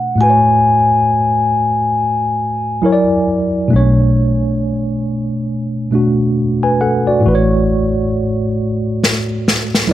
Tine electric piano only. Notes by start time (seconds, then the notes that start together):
Already playing: B2 A3 D4 C#5
0.16 A2 A3
0.21 F#4 B4
0.30 C#5
2.82 F#3 E4 A#4
2.86 C#5
2.92 D5
3.68 B2 A3
3.73 D4 C#5
5.91 B2 A3 D4 F#4
6.63 B4 G#5
6.81 A4 F#5
7.07 F#4 D5
7.20 A2 A3
7.26 F#4 B4
7.35 C#5
9.87 F#3 E4 A#4